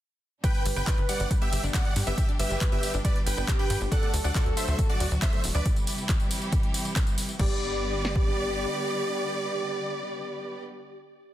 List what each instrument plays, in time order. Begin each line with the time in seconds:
0.44 string section B2 D3 G3 D4 G4, synth pluck G3, soft synth lead B4, supersaw synth B4 G5, kick, closed hi-hat, ride, tambourine
0.55 closed hi-hat
0.65 analog synth bass G1, synth pluck G3, open hi-hat, ride, tambourine
0.76 analog synth bass G1, synth pluck B3, supersaw synth B4 G5, closed hi-hat, tambourine
0.87 soft synth lead B4, kick, clap, closed hi-hat, ride, tambourine
0.98 analog synth bass G1, synth pluck D4, closed hi-hat
1.09 synth pluck G3, supersaw synth D5 F#5, open hi-hat, ride, tambourine
1.20 analog synth bass G1, closed hi-hat, tambourine
1.31 synth pluck G3, kick, closed hi-hat, ride, tambourine
1.41 synth pluck B3, supersaw synth G4 E5, closed hi-hat
1.52 analog synth bass G1, open hi-hat, ride, tambourine
1.63 analog synth bass G1, synth pluck D4, closed hi-hat, tambourine
1.74 synth pluck G3, supersaw synth D5 F#5, kick, clap, closed hi-hat, ride, tambourine
1.85 closed hi-hat
1.96 analog synth bass G2, synth pluck G3, open hi-hat, ride, tambourine
2.07 analog synth bass G1, synth pluck B3, supersaw synth G4 E5, closed hi-hat, tambourine
2.18 kick, closed hi-hat, ride, tambourine
2.29 synth pluck D4, closed hi-hat
2.39 analog synth bass G1, synth pluck G3, supersaw synth G4 E5, soft synth lead B4, open hi-hat, ride, tambourine
2.50 analog synth bass G1, closed hi-hat, tambourine
2.61 synth pluck G3, kick, clap, closed hi-hat, ride, tambourine
2.72 analog synth bass G1, synth pluck B3, supersaw synth G4 E5, closed hi-hat
2.83 open hi-hat, ride, tambourine
2.94 analog synth bass G1, synth pluck D4, closed hi-hat, tambourine
3.05 synth pluck G3, supersaw synth B4 D5, kick, closed hi-hat, ride, tambourine
3.16 closed hi-hat
3.26 analog synth bass G1, synth pluck G3, supersaw synth B4 G5, open hi-hat, ride, tambourine
3.37 analog synth bass G1, synth pluck B3, closed hi-hat, tambourine
3.48 soft synth lead G4, kick, clap, closed hi-hat, ride, tambourine
3.59 synth pluck D4, supersaw synth B4 G5, closed hi-hat
3.70 analog synth bass G2, synth pluck G3, open hi-hat, ride, tambourine
3.81 analog synth bass G1, closed hi-hat, tambourine
3.92 string section A2 F#3 F#4, synth pluck F#3, soft synth lead A4, supersaw synth D5 F#5, kick, closed hi-hat, ride, tambourine
4.03 synth pluck A3, closed hi-hat
4.14 analog synth bass D2, open hi-hat, ride, tambourine
4.24 analog synth bass D2, synth pluck D4, supersaw synth D5 F#5, closed hi-hat, tambourine
4.35 synth pluck F#3, soft synth lead A4, kick, clap, closed hi-hat, ride, tambourine
4.46 analog synth bass D2, closed hi-hat
4.57 synth pluck F#3, supersaw synth C5 E5, open hi-hat, ride, tambourine
4.68 analog synth bass D2, synth pluck A3, tambourine
4.79 kick, closed hi-hat, ride, tambourine
4.89 synth pluck D4, supersaw synth F#4 D5, closed hi-hat
5.00 analog synth bass D2, synth pluck F#3, open hi-hat, ride, tambourine
5.11 analog synth bass D2, closed hi-hat, tambourine
5.22 synth pluck F#3, supersaw synth C5 E5, kick, clap, closed hi-hat, ride, tambourine
5.33 synth pluck A3, closed hi-hat
5.44 analog synth bass D1, open hi-hat, ride, tambourine
5.55 analog synth bass D2, synth pluck D4, supersaw synth B4 D5, tambourine
5.66 string section C3 E3 G3 E4 G4, kick, closed hi-hat, ride, tambourine
5.76 closed hi-hat, tambourine
5.87 open hi-hat, ride, tambourine
5.98 closed hi-hat, tambourine
6.09 kick, clap, closed hi-hat, ride, tambourine
6.20 closed hi-hat, tambourine
6.31 open hi-hat, ride, tambourine
6.42 tambourine
6.53 kick, closed hi-hat, ride, tambourine
6.63 closed hi-hat
6.74 open hi-hat, ride, tambourine
6.85 closed hi-hat, tambourine
6.96 kick, clap, closed hi-hat, ride, tambourine
7.07 closed hi-hat, tambourine
7.18 open hi-hat, ride, tambourine
7.29 closed hi-hat, tambourine
7.39 analog synth bass G1, string section D3 G3 B3 G4 B4, synth pluck G3, soft synth lead G4, supersaw synth D5, kick, crash
8.05 snare
8.16 kick